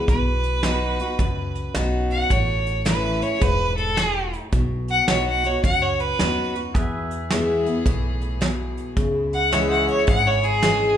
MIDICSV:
0, 0, Header, 1, 7, 480
1, 0, Start_track
1, 0, Tempo, 555042
1, 71, Time_signature, 4, 2, 24, 8
1, 9489, End_track
2, 0, Start_track
2, 0, Title_t, "Fiddle"
2, 0, Program_c, 0, 110
2, 77, Note_on_c, 0, 71, 89
2, 1480, Note_off_c, 0, 71, 0
2, 1826, Note_on_c, 0, 78, 87
2, 2001, Note_on_c, 0, 73, 79
2, 2014, Note_off_c, 0, 78, 0
2, 2463, Note_off_c, 0, 73, 0
2, 2485, Note_on_c, 0, 71, 90
2, 2788, Note_on_c, 0, 73, 93
2, 2801, Note_off_c, 0, 71, 0
2, 2957, Note_on_c, 0, 71, 109
2, 2970, Note_off_c, 0, 73, 0
2, 3255, Note_off_c, 0, 71, 0
2, 3260, Note_on_c, 0, 69, 109
2, 3727, Note_off_c, 0, 69, 0
2, 4241, Note_on_c, 0, 78, 94
2, 4393, Note_off_c, 0, 78, 0
2, 4398, Note_on_c, 0, 73, 85
2, 4551, Note_off_c, 0, 73, 0
2, 4559, Note_on_c, 0, 78, 84
2, 4723, Note_on_c, 0, 73, 85
2, 4736, Note_off_c, 0, 78, 0
2, 4871, Note_off_c, 0, 73, 0
2, 4876, Note_on_c, 0, 78, 104
2, 5033, Note_on_c, 0, 73, 89
2, 5045, Note_off_c, 0, 78, 0
2, 5191, Note_on_c, 0, 71, 102
2, 5204, Note_off_c, 0, 73, 0
2, 5658, Note_off_c, 0, 71, 0
2, 8076, Note_on_c, 0, 78, 91
2, 8238, Note_on_c, 0, 73, 83
2, 8251, Note_off_c, 0, 78, 0
2, 8383, Note_off_c, 0, 73, 0
2, 8389, Note_on_c, 0, 78, 89
2, 8547, Note_off_c, 0, 78, 0
2, 8554, Note_on_c, 0, 73, 90
2, 8709, Note_off_c, 0, 73, 0
2, 8721, Note_on_c, 0, 78, 110
2, 8877, Note_on_c, 0, 73, 95
2, 8890, Note_off_c, 0, 78, 0
2, 9029, Note_on_c, 0, 68, 110
2, 9042, Note_off_c, 0, 73, 0
2, 9489, Note_off_c, 0, 68, 0
2, 9489, End_track
3, 0, Start_track
3, 0, Title_t, "Pedal steel guitar"
3, 0, Program_c, 1, 26
3, 5832, Note_on_c, 1, 68, 72
3, 5843, Note_on_c, 1, 71, 72
3, 5849, Note_on_c, 1, 76, 74
3, 7734, Note_off_c, 1, 68, 0
3, 7740, Note_off_c, 1, 71, 0
3, 7743, Note_off_c, 1, 76, 0
3, 8247, Note_on_c, 1, 68, 71
3, 8252, Note_on_c, 1, 71, 73
3, 8264, Note_on_c, 1, 76, 73
3, 8468, Note_off_c, 1, 71, 0
3, 8468, Note_on_c, 1, 73, 73
3, 9489, Note_off_c, 1, 68, 0
3, 9489, Note_off_c, 1, 73, 0
3, 9489, Note_off_c, 1, 76, 0
3, 9489, End_track
4, 0, Start_track
4, 0, Title_t, "Steel-string acoustic guitar"
4, 0, Program_c, 2, 25
4, 78, Note_on_c, 2, 47, 75
4, 552, Note_on_c, 2, 54, 83
4, 557, Note_on_c, 2, 59, 78
4, 563, Note_on_c, 2, 63, 96
4, 569, Note_on_c, 2, 66, 98
4, 849, Note_off_c, 2, 54, 0
4, 851, Note_off_c, 2, 59, 0
4, 855, Note_off_c, 2, 63, 0
4, 858, Note_off_c, 2, 66, 0
4, 870, Note_on_c, 2, 66, 57
4, 885, Note_on_c, 2, 63, 50
4, 1001, Note_off_c, 2, 47, 0
4, 1029, Note_off_c, 2, 66, 0
4, 1036, Note_off_c, 2, 63, 0
4, 1037, Note_on_c, 2, 42, 84
4, 1520, Note_on_c, 2, 54, 75
4, 1525, Note_on_c, 2, 59, 84
4, 1528, Note_on_c, 2, 63, 89
4, 1534, Note_on_c, 2, 66, 93
4, 1961, Note_off_c, 2, 42, 0
4, 1979, Note_off_c, 2, 54, 0
4, 1981, Note_off_c, 2, 59, 0
4, 1983, Note_off_c, 2, 63, 0
4, 1986, Note_off_c, 2, 66, 0
4, 1997, Note_on_c, 2, 45, 88
4, 2465, Note_on_c, 2, 52, 85
4, 2474, Note_on_c, 2, 57, 91
4, 2478, Note_on_c, 2, 61, 82
4, 2484, Note_on_c, 2, 64, 92
4, 2766, Note_off_c, 2, 52, 0
4, 2771, Note_off_c, 2, 57, 0
4, 2773, Note_off_c, 2, 61, 0
4, 2776, Note_off_c, 2, 64, 0
4, 2786, Note_on_c, 2, 64, 61
4, 2799, Note_on_c, 2, 61, 50
4, 2921, Note_off_c, 2, 45, 0
4, 2947, Note_off_c, 2, 64, 0
4, 2954, Note_off_c, 2, 61, 0
4, 2954, Note_on_c, 2, 44, 93
4, 3417, Note_off_c, 2, 44, 0
4, 3438, Note_on_c, 2, 45, 84
4, 3899, Note_off_c, 2, 45, 0
4, 3913, Note_on_c, 2, 47, 83
4, 4394, Note_on_c, 2, 54, 83
4, 4399, Note_on_c, 2, 59, 95
4, 4406, Note_on_c, 2, 63, 83
4, 4412, Note_on_c, 2, 66, 105
4, 4691, Note_off_c, 2, 54, 0
4, 4694, Note_off_c, 2, 59, 0
4, 4694, Note_off_c, 2, 66, 0
4, 4697, Note_off_c, 2, 63, 0
4, 4705, Note_on_c, 2, 66, 59
4, 4722, Note_on_c, 2, 63, 47
4, 4840, Note_off_c, 2, 47, 0
4, 4868, Note_off_c, 2, 66, 0
4, 4876, Note_off_c, 2, 63, 0
4, 4884, Note_on_c, 2, 42, 89
4, 5359, Note_on_c, 2, 54, 78
4, 5368, Note_on_c, 2, 59, 81
4, 5371, Note_on_c, 2, 63, 92
4, 5375, Note_on_c, 2, 66, 96
4, 5654, Note_off_c, 2, 54, 0
4, 5658, Note_off_c, 2, 59, 0
4, 5660, Note_off_c, 2, 63, 0
4, 5662, Note_off_c, 2, 66, 0
4, 5672, Note_on_c, 2, 66, 55
4, 5690, Note_on_c, 2, 63, 44
4, 5805, Note_off_c, 2, 42, 0
4, 5832, Note_off_c, 2, 66, 0
4, 5840, Note_off_c, 2, 63, 0
4, 5847, Note_on_c, 2, 40, 84
4, 6321, Note_on_c, 2, 52, 78
4, 6324, Note_on_c, 2, 56, 85
4, 6330, Note_on_c, 2, 59, 92
4, 6339, Note_on_c, 2, 64, 83
4, 6615, Note_off_c, 2, 52, 0
4, 6616, Note_off_c, 2, 56, 0
4, 6617, Note_off_c, 2, 64, 0
4, 6619, Note_off_c, 2, 59, 0
4, 6628, Note_on_c, 2, 64, 58
4, 6644, Note_on_c, 2, 59, 47
4, 6767, Note_off_c, 2, 40, 0
4, 6789, Note_off_c, 2, 64, 0
4, 6798, Note_off_c, 2, 59, 0
4, 6800, Note_on_c, 2, 45, 94
4, 7260, Note_off_c, 2, 45, 0
4, 7271, Note_on_c, 2, 47, 77
4, 7736, Note_off_c, 2, 47, 0
4, 7755, Note_on_c, 2, 49, 81
4, 8229, Note_on_c, 2, 52, 81
4, 8236, Note_on_c, 2, 56, 87
4, 8243, Note_on_c, 2, 61, 89
4, 8248, Note_on_c, 2, 64, 93
4, 8680, Note_off_c, 2, 49, 0
4, 8695, Note_off_c, 2, 52, 0
4, 8698, Note_off_c, 2, 56, 0
4, 8702, Note_off_c, 2, 61, 0
4, 8704, Note_off_c, 2, 64, 0
4, 8709, Note_on_c, 2, 44, 94
4, 9187, Note_on_c, 2, 52, 89
4, 9192, Note_on_c, 2, 56, 94
4, 9201, Note_on_c, 2, 61, 89
4, 9204, Note_on_c, 2, 64, 94
4, 9489, Note_off_c, 2, 44, 0
4, 9489, Note_off_c, 2, 52, 0
4, 9489, Note_off_c, 2, 56, 0
4, 9489, Note_off_c, 2, 61, 0
4, 9489, Note_off_c, 2, 64, 0
4, 9489, End_track
5, 0, Start_track
5, 0, Title_t, "String section"
5, 0, Program_c, 3, 48
5, 5836, Note_on_c, 3, 68, 83
5, 5837, Note_on_c, 3, 52, 80
5, 5839, Note_on_c, 3, 59, 67
5, 7736, Note_off_c, 3, 68, 0
5, 7737, Note_off_c, 3, 52, 0
5, 7738, Note_off_c, 3, 59, 0
5, 7754, Note_on_c, 3, 56, 68
5, 7755, Note_on_c, 3, 64, 83
5, 7756, Note_on_c, 3, 49, 78
5, 9489, Note_off_c, 3, 49, 0
5, 9489, Note_off_c, 3, 56, 0
5, 9489, Note_off_c, 3, 64, 0
5, 9489, End_track
6, 0, Start_track
6, 0, Title_t, "Upright bass"
6, 0, Program_c, 4, 32
6, 72, Note_on_c, 4, 35, 91
6, 855, Note_off_c, 4, 35, 0
6, 1029, Note_on_c, 4, 37, 73
6, 1438, Note_off_c, 4, 37, 0
6, 1512, Note_on_c, 4, 35, 83
6, 1920, Note_off_c, 4, 35, 0
6, 1994, Note_on_c, 4, 33, 92
6, 2777, Note_off_c, 4, 33, 0
6, 2953, Note_on_c, 4, 28, 75
6, 3737, Note_off_c, 4, 28, 0
6, 3914, Note_on_c, 4, 35, 96
6, 4305, Note_off_c, 4, 35, 0
6, 4391, Note_on_c, 4, 35, 82
6, 4800, Note_off_c, 4, 35, 0
6, 4874, Note_on_c, 4, 37, 76
6, 5282, Note_off_c, 4, 37, 0
6, 5358, Note_on_c, 4, 39, 84
6, 5764, Note_off_c, 4, 39, 0
6, 5836, Note_on_c, 4, 40, 97
6, 6619, Note_off_c, 4, 40, 0
6, 6795, Note_on_c, 4, 35, 81
6, 7578, Note_off_c, 4, 35, 0
6, 7755, Note_on_c, 4, 37, 87
6, 8538, Note_off_c, 4, 37, 0
6, 8717, Note_on_c, 4, 32, 81
6, 9489, Note_off_c, 4, 32, 0
6, 9489, End_track
7, 0, Start_track
7, 0, Title_t, "Drums"
7, 70, Note_on_c, 9, 36, 104
7, 71, Note_on_c, 9, 42, 84
7, 157, Note_off_c, 9, 36, 0
7, 157, Note_off_c, 9, 42, 0
7, 376, Note_on_c, 9, 42, 65
7, 462, Note_off_c, 9, 42, 0
7, 544, Note_on_c, 9, 38, 108
7, 544, Note_on_c, 9, 42, 88
7, 630, Note_off_c, 9, 38, 0
7, 630, Note_off_c, 9, 42, 0
7, 858, Note_on_c, 9, 42, 68
7, 945, Note_off_c, 9, 42, 0
7, 1025, Note_on_c, 9, 42, 83
7, 1029, Note_on_c, 9, 36, 107
7, 1112, Note_off_c, 9, 42, 0
7, 1116, Note_off_c, 9, 36, 0
7, 1341, Note_on_c, 9, 42, 66
7, 1428, Note_off_c, 9, 42, 0
7, 1509, Note_on_c, 9, 38, 103
7, 1509, Note_on_c, 9, 42, 81
7, 1595, Note_off_c, 9, 38, 0
7, 1595, Note_off_c, 9, 42, 0
7, 1821, Note_on_c, 9, 42, 52
7, 1908, Note_off_c, 9, 42, 0
7, 1992, Note_on_c, 9, 36, 100
7, 1992, Note_on_c, 9, 42, 81
7, 2078, Note_off_c, 9, 42, 0
7, 2079, Note_off_c, 9, 36, 0
7, 2305, Note_on_c, 9, 42, 63
7, 2391, Note_off_c, 9, 42, 0
7, 2471, Note_on_c, 9, 38, 107
7, 2471, Note_on_c, 9, 42, 83
7, 2558, Note_off_c, 9, 38, 0
7, 2558, Note_off_c, 9, 42, 0
7, 2787, Note_on_c, 9, 42, 61
7, 2873, Note_off_c, 9, 42, 0
7, 2954, Note_on_c, 9, 36, 112
7, 2955, Note_on_c, 9, 42, 81
7, 3040, Note_off_c, 9, 36, 0
7, 3041, Note_off_c, 9, 42, 0
7, 3264, Note_on_c, 9, 42, 59
7, 3351, Note_off_c, 9, 42, 0
7, 3434, Note_on_c, 9, 38, 100
7, 3434, Note_on_c, 9, 42, 76
7, 3521, Note_off_c, 9, 38, 0
7, 3521, Note_off_c, 9, 42, 0
7, 3747, Note_on_c, 9, 42, 54
7, 3833, Note_off_c, 9, 42, 0
7, 3912, Note_on_c, 9, 42, 82
7, 3914, Note_on_c, 9, 36, 104
7, 3998, Note_off_c, 9, 42, 0
7, 4001, Note_off_c, 9, 36, 0
7, 4222, Note_on_c, 9, 42, 62
7, 4308, Note_off_c, 9, 42, 0
7, 4391, Note_on_c, 9, 38, 110
7, 4391, Note_on_c, 9, 42, 83
7, 4478, Note_off_c, 9, 38, 0
7, 4478, Note_off_c, 9, 42, 0
7, 4705, Note_on_c, 9, 42, 65
7, 4792, Note_off_c, 9, 42, 0
7, 4874, Note_on_c, 9, 42, 92
7, 4875, Note_on_c, 9, 36, 113
7, 4961, Note_off_c, 9, 42, 0
7, 4962, Note_off_c, 9, 36, 0
7, 5184, Note_on_c, 9, 42, 63
7, 5270, Note_off_c, 9, 42, 0
7, 5356, Note_on_c, 9, 38, 115
7, 5356, Note_on_c, 9, 42, 88
7, 5442, Note_off_c, 9, 38, 0
7, 5442, Note_off_c, 9, 42, 0
7, 5666, Note_on_c, 9, 42, 57
7, 5753, Note_off_c, 9, 42, 0
7, 5836, Note_on_c, 9, 36, 106
7, 5837, Note_on_c, 9, 42, 87
7, 5923, Note_off_c, 9, 36, 0
7, 5923, Note_off_c, 9, 42, 0
7, 6148, Note_on_c, 9, 42, 62
7, 6235, Note_off_c, 9, 42, 0
7, 6317, Note_on_c, 9, 38, 108
7, 6317, Note_on_c, 9, 42, 85
7, 6404, Note_off_c, 9, 38, 0
7, 6404, Note_off_c, 9, 42, 0
7, 6626, Note_on_c, 9, 42, 62
7, 6713, Note_off_c, 9, 42, 0
7, 6795, Note_on_c, 9, 36, 108
7, 6798, Note_on_c, 9, 42, 85
7, 6881, Note_off_c, 9, 36, 0
7, 6885, Note_off_c, 9, 42, 0
7, 7102, Note_on_c, 9, 42, 56
7, 7189, Note_off_c, 9, 42, 0
7, 7278, Note_on_c, 9, 38, 110
7, 7278, Note_on_c, 9, 42, 79
7, 7364, Note_off_c, 9, 38, 0
7, 7364, Note_off_c, 9, 42, 0
7, 7588, Note_on_c, 9, 42, 50
7, 7675, Note_off_c, 9, 42, 0
7, 7755, Note_on_c, 9, 36, 100
7, 7756, Note_on_c, 9, 42, 79
7, 7841, Note_off_c, 9, 36, 0
7, 7843, Note_off_c, 9, 42, 0
7, 8068, Note_on_c, 9, 42, 61
7, 8154, Note_off_c, 9, 42, 0
7, 8237, Note_on_c, 9, 38, 103
7, 8237, Note_on_c, 9, 42, 86
7, 8324, Note_off_c, 9, 38, 0
7, 8324, Note_off_c, 9, 42, 0
7, 8546, Note_on_c, 9, 42, 63
7, 8633, Note_off_c, 9, 42, 0
7, 8716, Note_on_c, 9, 36, 124
7, 8718, Note_on_c, 9, 42, 85
7, 8802, Note_off_c, 9, 36, 0
7, 8804, Note_off_c, 9, 42, 0
7, 9023, Note_on_c, 9, 42, 72
7, 9109, Note_off_c, 9, 42, 0
7, 9189, Note_on_c, 9, 38, 113
7, 9189, Note_on_c, 9, 42, 90
7, 9276, Note_off_c, 9, 38, 0
7, 9276, Note_off_c, 9, 42, 0
7, 9489, End_track
0, 0, End_of_file